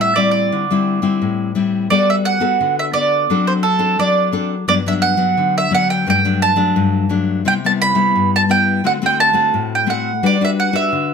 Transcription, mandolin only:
0.01 E5
0.16 D5
0.31 D5
1.90 D5
2.10 E5
2.25 F#5
2.79 E5
2.94 D5
3.47 C5
3.63 A4
4.00 D5
4.69 D5
4.88 E5
5.02 F#5
5.58 E5
5.75 F#5
5.90 G5
6.10 G5
6.42 A5
7.48 G5
7.66 A5
7.82 B5
8.36 A5
8.51 G5
8.86 F#5
9.06 G5
9.20 A5
9.75 G5
9.90 F#5
10.26 D5
10.45 E5
10.60 F#5
10.76 E5

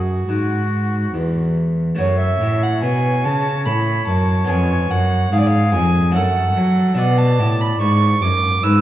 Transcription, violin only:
Already playing: F#4
1.99 C#5
2.20 E5
2.63 F#5
2.83 G#5
3.25 A5
3.65 B5
4.07 A5
4.50 G#5
4.91 F#5
5.33 F5
5.40 D5
5.47 F5
5.74 G#5
6.15 F#5
6.97 F#5
7.18 A5
7.61 B5
7.81 C#6
8.22 D6
8.63 E6

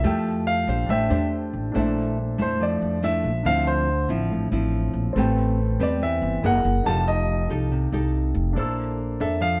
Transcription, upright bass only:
0.04 F2
0.67 A#1
0.89 A1
1.10 E2
1.53 A1
1.75 A#1
2.39 F2
2.82 F2
3.24 A#1
3.45 D2
4.09 A1
4.52 A1
4.94 A#1
5.16 A1
5.80 E2
6.22 G1
6.44 F#1
6.65 F#1
6.86 F1
7.50 C2
7.92 C2
8.35 F1
8.56 A#1
9.20 F2

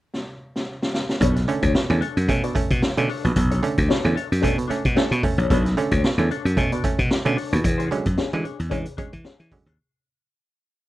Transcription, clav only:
1.21 B2
1.36 A3 C#4
1.48 D3 A3 C#4
1.75 B2
1.90 D3 A3 C#4
2.02 A3 C#4
2.29 A3 C#4
2.44 B2
2.55 A3 C#4
2.97 D3 A3 C#4
3.25 B2
3.37 B2
3.51 A3 C#4
3.63 D3 A3 C#4
3.90 B2
4.05 D3 A3 C#4
4.16 A3 C#4
4.43 A3 C#4
4.58 B2
4.70 A3 C#4
4.97 A3 C#4
5.12 B2
5.23 A3 C#4
5.51 B2
5.65 A3 C#4
5.77 D3 A3 C#4
6.04 B2
6.18 D3 A3 C#4
6.31 A3 C#4
6.57 A3 C#4
6.73 B2
6.84 A3 C#4
7.25 D3 A3 C#4
7.53 B2
7.80 G#3 C#4
7.91 D3 F#3 G#3 C#4
8.33 D3 F#3 G#3 C#4
8.45 G#3 C#4
8.71 G#3 C#4
8.98 G#3 C#4
9.52 D3 F#3 G#3 C#4
9.67 G#3 C#4

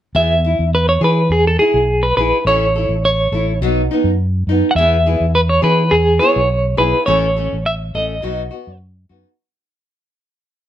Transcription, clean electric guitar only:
0.16 E5
0.75 B4
0.89 C#5
1.04 B4
1.32 G#4
1.47 A4
1.59 G#4
2.03 B4
2.17 B4
2.47 C#5
3.05 C#5
4.71 F#5
4.76 E5
5.35 B4
5.49 C#5
5.64 B4
5.91 G#4
6.19 C#5
6.78 B4
7.06 C#5
7.66 E5
7.95 D#5

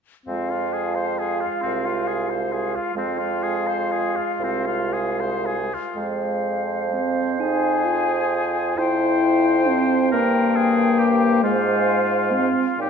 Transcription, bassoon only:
0.28 F2
1.65 C2
2.96 F2
4.40 C2
5.96 F2
8.76 F2
10.13 G2
11.43 G#2
12.79 A#2

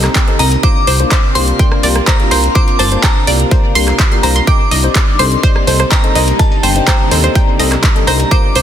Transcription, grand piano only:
0.28 C4 D#4 G4 A4
0.39 C4 D#4 G4 A#4
0.63 A#3 D4 F4 A#4
1.00 A#3 D4 F4 C5
1.35 A#3 D4 F4 G4
1.59 A#3 D4 F4 D5
1.83 A#3 D4 F4 G4
2.20 A#3 D4 F4 G4
2.31 A#3 D4 F4 A#4
2.55 A#3 D4 F4 A#4
2.92 A#3 D4 F4 C5
3.27 A#3 D4 F4 G4
3.51 A#3 D4 F4 D5
3.75 A#3 D4 F4 G4
4.12 A#3 D4 F4 G4
4.23 A#3 D4 F4 A#4
4.47 C4 D#4 A#4
4.84 C4 D#4 G4 C5
5.19 C4 D#4 G4 A4
5.43 C4 D#4 G4 D5
5.67 C4 D#4 G4 A4
6.04 C4 D#4 G4 A4
6.15 C4 D#4 G4 A#4
6.39 C4 D#4 G4 A#4
6.76 C4 D#4 G4 C5
7.11 C4 D#4 G4 A4
7.35 C4 D#4 G4 D5
7.59 C4 D#4 G4 A4
7.96 C4 D#4 G4 A4
8.07 C4 D#4 A#4
8.31 A#3 D4 F4 A#4

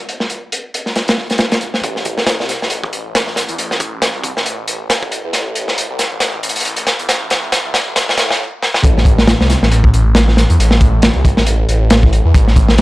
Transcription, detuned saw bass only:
1.84 A1
2.40 C2
2.62 A1
2.93 A1
3.49 E2
3.58 A1
4.15 C2
4.37 A1
4.68 A1
5.24 E2
5.34 A1
5.90 C2
6.12 A1
6.43 A1
7.00 E2
7.09 A1
7.65 C2
7.87 A1
8.18 A2
8.84 A1
9.40 C2
9.62 A1
9.94 A1
10.50 E2
10.59 A1
11.16 C2
11.38 A1
11.69 A1
12.25 E2
12.34 A1

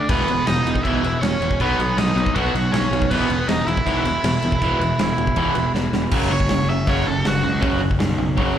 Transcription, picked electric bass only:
0.09 E1
0.29 E1
0.47 E1
0.65 E1
0.85 B1
1.03 E1
1.22 E1
1.41 E1
1.60 B1
1.78 B1
1.97 B1
2.16 B1
2.36 B1
2.53 B1
2.73 B1
2.91 B1
3.11 E1
3.29 E1
3.48 E1
3.67 E1
3.86 B1
4.04 E1
4.24 E1
4.42 E1
4.61 E1
4.80 E1
4.99 E1
5.18 E1
5.37 E1
5.56 E1
5.74 E1
5.93 E1
6.12 F#1
6.30 F#1
6.49 F#1
6.87 F#1
7.06 F#1
7.25 F#1
7.44 C#2
7.62 F#1
8.00 B1
8.37 F#1

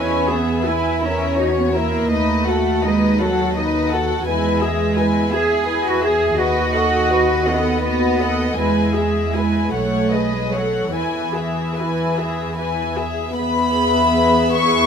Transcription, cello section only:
Already playing: C#4
0.30 B3
0.67 E4
1.04 C#4
1.41 D#4
1.49 C#4
1.58 B3
1.67 C#4
1.76 A#3
2.13 A3
2.85 G#3
3.21 F#3
4.28 G#3
5.33 G#4
5.86 F#4
6.03 G#4
6.39 F#4
7.47 B3
8.58 G#3
9.73 A3
10.32 G#3
10.52 F#3
10.93 E3
14.56 E4

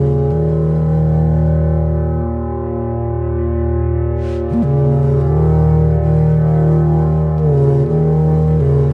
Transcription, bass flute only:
Already playing: C#3
0.32 D#3
4.50 C#3 A#3
4.63 C#3
5.21 D#3
6.01 D#3
7.39 C#3
7.87 D#3
8.60 C#3

